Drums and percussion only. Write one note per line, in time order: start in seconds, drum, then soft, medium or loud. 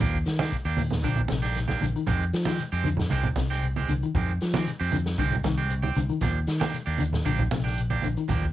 0.00 kick medium
0.00 closed hi-hat medium
0.00 low conga medium
0.13 kick medium
0.13 closed hi-hat soft
0.13 shekere soft
0.26 snare medium
0.26 closed hi-hat medium
0.26 shekere medium
0.39 snare medium
0.39 high conga loud
0.39 shekere soft
0.51 kick medium
0.51 closed hi-hat medium
0.51 shekere loud
0.65 closed hi-hat soft
0.65 shekere soft
0.77 open hi-hat medium
0.77 high conga medium
0.77 shekere medium
0.90 snare medium
0.90 low conga medium
0.90 shekere soft
1.03 kick medium
1.03 closed hi-hat medium
1.03 high conga medium
1.03 shekere medium
1.16 low conga medium
1.16 shekere soft
1.28 snare medium
1.28 closed hi-hat soft
1.28 high conga medium
1.28 shekere medium
1.42 snare soft
1.42 closed hi-hat soft
1.42 shekere soft
1.55 snare soft
1.55 closed hi-hat medium
1.55 shekere medium
1.68 snare medium
1.68 high conga medium
1.68 shekere soft
1.81 closed hi-hat soft
1.81 high conga medium
1.81 shekere medium
1.96 closed hi-hat soft
1.96 shekere soft
2.07 kick medium
2.07 closed hi-hat medium
2.07 low conga medium
2.07 shekere medium
2.21 closed hi-hat soft
2.21 shekere soft
2.33 snare medium
2.33 closed hi-hat soft
2.33 shekere medium
2.45 snare medium
2.45 high conga medium
2.45 shekere soft
2.59 closed hi-hat medium
2.59 shekere medium
2.74 shekere soft
2.84 closed hi-hat soft
2.84 high conga medium
2.84 shekere medium
2.97 snare medium
2.97 low conga medium
2.97 shekere soft
3.10 kick medium
3.10 closed hi-hat medium
3.10 high conga medium
3.10 shekere medium
3.23 kick medium
3.23 closed hi-hat soft
3.23 low conga medium
3.23 shekere soft
3.36 kick medium
3.36 snare medium
3.36 closed hi-hat soft
3.36 high conga medium
3.36 shekere medium
3.51 snare soft
3.51 shekere soft
3.63 closed hi-hat medium
3.63 shekere medium
3.76 high conga medium
3.76 shekere soft
3.89 closed hi-hat medium
3.89 high conga medium
3.89 shekere medium
4.02 closed hi-hat soft
4.02 shekere soft
4.15 kick loud
4.15 closed hi-hat medium
4.15 low conga medium
4.15 shekere medium
4.28 closed hi-hat soft
4.28 shekere soft
4.41 snare medium
4.41 closed hi-hat medium
4.41 shekere medium
4.54 snare medium
4.54 high conga loud
4.54 shekere soft
4.67 closed hi-hat medium
4.67 shekere medium
4.79 closed hi-hat soft
4.79 shekere soft
4.92 closed hi-hat medium
4.92 high conga medium
4.92 shekere medium
5.06 snare medium
5.06 shekere soft
5.17 kick medium
5.17 closed hi-hat medium
5.17 high conga medium
5.17 shekere medium
5.32 kick medium
5.32 low conga medium
5.32 shekere soft
5.43 kick medium
5.43 snare medium
5.43 closed hi-hat soft
5.43 high conga medium
5.43 shekere medium
5.57 closed hi-hat soft
5.57 shekere soft
5.70 closed hi-hat medium
5.70 shekere medium
5.83 high conga medium
5.83 shekere soft
5.95 closed hi-hat medium
5.95 high conga medium
5.95 shekere medium
6.09 closed hi-hat soft
6.09 shekere soft
6.21 kick medium
6.21 snare soft
6.21 closed hi-hat medium
6.21 low conga medium
6.21 shekere medium
6.34 closed hi-hat soft
6.34 shekere soft
6.47 snare medium
6.47 closed hi-hat soft
6.47 shekere medium
6.61 snare medium
6.61 high conga loud
6.61 shekere soft
6.73 closed hi-hat medium
6.73 shekere loud
6.87 shekere soft
6.98 closed hi-hat medium
6.98 high conga medium
6.98 shekere medium
7.13 snare medium
7.13 low conga medium
7.13 shekere soft
7.25 kick medium
7.25 closed hi-hat medium
7.25 shekere medium
7.39 kick medium
7.39 closed hi-hat soft
7.39 low conga medium
7.39 shekere soft
7.51 kick medium
7.51 snare medium
7.51 closed hi-hat soft
7.51 high conga loud
7.51 shekere medium
7.65 snare soft
7.65 shekere soft
7.77 closed hi-hat medium
7.77 shekere medium
7.90 high conga medium
7.90 shekere soft
8.02 closed hi-hat medium
8.02 high conga medium
8.02 shekere medium
8.17 closed hi-hat soft
8.17 shekere soft
8.29 kick medium
8.29 closed hi-hat medium
8.29 low conga medium
8.29 shekere medium
8.43 kick medium
8.43 closed hi-hat soft
8.43 shekere soft